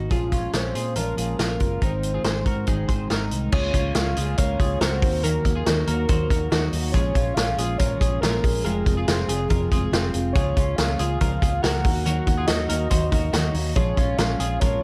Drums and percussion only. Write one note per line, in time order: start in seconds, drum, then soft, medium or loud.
0.11 kick medium
0.11 closed hi-hat medium
0.32 kick medium
0.32 closed hi-hat medium
0.53 snare medium
0.53 closed hi-hat loud
0.75 closed hi-hat medium
0.96 closed hi-hat medium
1.18 closed hi-hat medium
1.39 snare medium
1.39 closed hi-hat medium
1.60 kick medium
1.60 closed hi-hat medium
1.82 kick medium
1.82 closed hi-hat medium
2.03 closed hi-hat medium
2.24 snare loud
2.24 closed hi-hat medium
2.46 kick medium
2.46 closed hi-hat medium
2.67 kick medium
2.67 closed hi-hat medium
2.89 kick medium
2.89 closed hi-hat medium
3.10 snare medium
3.10 closed hi-hat medium
3.31 closed hi-hat medium
3.52 kick loud
3.52 crash medium
3.74 kick medium
3.74 closed hi-hat medium
3.95 snare loud
3.95 closed hi-hat loud
4.17 closed hi-hat medium
4.38 kick medium
4.38 closed hi-hat medium
4.60 kick medium
4.60 closed hi-hat medium
4.81 snare loud
4.81 closed hi-hat medium
5.02 kick loud
5.02 open hi-hat medium
5.24 closed hi-hat medium
5.45 kick medium
5.45 closed hi-hat medium
5.66 snare loud
5.66 closed hi-hat loud
5.87 closed hi-hat medium
6.09 kick medium
6.09 closed hi-hat medium
6.30 kick medium
6.30 closed hi-hat medium
6.52 snare loud
6.52 closed hi-hat medium
6.73 open hi-hat medium
6.94 kick loud
6.94 closed hi-hat medium
7.15 kick medium
7.15 closed hi-hat medium
7.37 snare loud
7.37 closed hi-hat loud
7.58 closed hi-hat medium
7.79 kick medium
7.79 closed hi-hat medium
8.01 kick medium
8.01 closed hi-hat medium
8.23 snare loud
8.23 closed hi-hat medium
8.44 kick medium
8.44 open hi-hat medium
8.66 closed hi-hat medium
8.86 kick medium
8.86 closed hi-hat medium
9.08 snare loud
9.08 closed hi-hat loud
9.29 closed hi-hat medium
9.50 kick medium
9.50 closed hi-hat medium
9.72 kick medium
9.72 closed hi-hat medium
9.93 snare loud
9.93 closed hi-hat medium
10.14 closed hi-hat medium
10.35 kick loud
10.35 closed hi-hat medium
10.57 kick medium
10.57 closed hi-hat medium
10.78 snare loud
10.78 closed hi-hat loud
10.99 closed hi-hat medium
11.21 kick medium
11.21 closed hi-hat medium
11.42 kick medium
11.42 closed hi-hat medium
11.64 snare loud
11.64 closed hi-hat medium
11.84 kick loud
11.84 open hi-hat medium
12.06 closed hi-hat medium
12.27 kick medium
12.27 closed hi-hat medium
12.47 snare loud
12.47 closed hi-hat loud
12.69 closed hi-hat medium
12.91 kick medium
12.91 closed hi-hat medium
13.12 kick medium
13.12 closed hi-hat medium
13.33 snare loud
13.33 closed hi-hat loud
13.54 open hi-hat medium
13.76 kick loud
13.76 closed hi-hat medium
13.97 kick medium
13.97 closed hi-hat medium
14.18 snare loud
14.18 closed hi-hat medium
14.40 closed hi-hat medium
14.61 kick medium
14.61 closed hi-hat medium